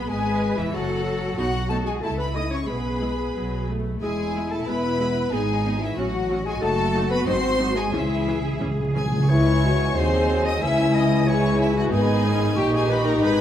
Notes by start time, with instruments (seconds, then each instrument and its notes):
0.08 double bass section G#1, french horn section G#3, viola section G#3, violin section G#4 G#5, clarinet G#4, cello section B4, flute section G#5
0.56 double bass section E1, french horn section E3, viola section E3, clarinet E4, violin section E4 E5, flute section E5
0.71 double bass section F#1, french horn section F#3, viola section F#3, clarinet F#4, cello section A4, violin section F#5, flute section F#5
0.75 violin section F#4
1.36 double bass section B1, french horn section F#3, viola section B3 D#4, clarinet F#4, cello section F#4, violin section F#4 F#5, flute section F#5
1.68 french horn section A3, viola section B3 D#4, clarinet A4, violin section A4 A5, flute section A5
1.84 french horn section G#3, clarinet G#4, flute section G#5, violin section G#5
1.89 violin section G#4
2.01 double bass section C#2, french horn section A3, viola section A3 E4, cello section E4, clarinet A4, violin section A5, flute section A5
2.05 violin section A4
2.17 french horn section B3, clarinet B4, violin section B4 B5, flute section B5
2.33 viola section A3 E4, french horn section D#4, clarinet D#5, violin section D#5 D#6, flute section D#6
2.49 french horn section C#4, clarinet C#5, violin section C#5 C#6, flute section C#6
2.67 double bass section B1, viola section G#3 E4, french horn section B3, cello section G#4, clarinet B4, violin section B4 B5, flute section B5
3.01 viola section G#3 E4
3.34 double bass section B1, viola section F#3
3.69 viola section A3
4.01 double bass section E1, french horn section G#3, viola section G#3 E4, cello section E4, clarinet G#4, violin section G#4 G#5, flute section G#5
4.35 viola section G#3 E4
4.51 french horn section A3, clarinet A4, violin section A4 A5, flute section A5
4.65 double bass section E1, viola section G#3 E4, french horn section B3, clarinet B4, violin section B4 B5, flute section B5
4.99 viola section G#3 E4
5.31 double bass section G#1, french horn section G#3, viola section B3 D#4, cello section D#4, violin section G#4 G#5, clarinet G#4, flute section G#5
5.65 viola section B3 D#4
5.80 french horn section E3, clarinet E4, violin section E4 E5, flute section E5
5.97 double bass section A1, french horn section F#3, viola section F#3 C#4, cello section F#4, clarinet F#4, violin section F#4 F#5, flute section F#5
6.30 viola section F#3 C#4
6.44 french horn section G#3, clarinet G#4, violin section G#4 G#5, flute section G#5
6.61 double bass section F#1, viola section F#3 D#4, french horn section A3, clarinet A4, violin section A4 A5, flute section A5
6.95 viola section F#3 D#4
7.10 french horn section B3, clarinet B4, violin section B4 B5, flute section B5
7.24 double bass section G#1, viola section F#3 D#4, french horn section C4, clarinet C5, violin section C5 C6, flute section C6
7.60 viola section F#3 D#4
7.75 french horn section G#3, clarinet G#4, violin section G#4 G#5, flute section G#5
7.91 double bass section C#2, timpani C#3, french horn section E3, viola section E3 C#4, violin section E4 E5, clarinet E4, cello section G#4, flute section E5
8.01 timpani C#3
8.08 timpani C#3
8.16 timpani C#3
8.24 timpani C#3, viola section E3 C#4
8.32 timpani C#3
8.40 timpani C#3
8.47 timpani C#3
8.55 timpani C#3
8.60 double bass section C#2, timpani C#3, viola section E3 C#4
8.71 timpani C#3
8.80 timpani C#3
8.87 timpani C#3
8.95 timpani C#3, viola section E3 C#4, violin section G#4 G#5, clarinet G#4
9.04 timpani C#3
9.12 timpani C#3
9.20 timpani C#3
9.29 double bass section C#2, cello section C#2, bassoon E3, viola section G#3 E4, french horn section E4, clarinet C#5, violin section C#5 C#6, flute section G#5
9.64 french horn section F#4
9.95 double bass section D#2, cello section D#2, bassoon F#3, viola section C4 D#4, french horn section G#4, clarinet C5, violin section C5 C6
10.45 violin section D#5 D#6, clarinet D#5
10.61 double bass section C#2, cello section C#2, bassoon E3, viola section C#4 E4, french horn section E4, violin section E5 E6, clarinet E5
10.94 clarinet D#5, violin section D#5 D#6
11.27 viola section G#3 E4, french horn section G#4, clarinet C#5, violin section C#5 C#6
11.60 clarinet E4, violin section E4 E5
11.75 clarinet F#4, violin section F#4 F#5
11.91 double bass section G#1, cello section G#2, bassoon D#3, viola section B3 D#4, clarinet G#4, violin section G#4 G#5, french horn section B4, flute section B5
12.25 viola section C#4, french horn section D#4
12.56 double bass section A#1, cello section A#2, viola section D#4 G4, clarinet G4, violin section G4 G5, flute section C#6
12.73 clarinet G#4, violin section G#4 G#5
12.89 clarinet B4, violin section B4 B5
13.05 clarinet A#4, violin section A#4 A#5
13.20 double bass section G#1, cello section G#2, viola section G#4, violin section B4 B5, clarinet B4, flute section B5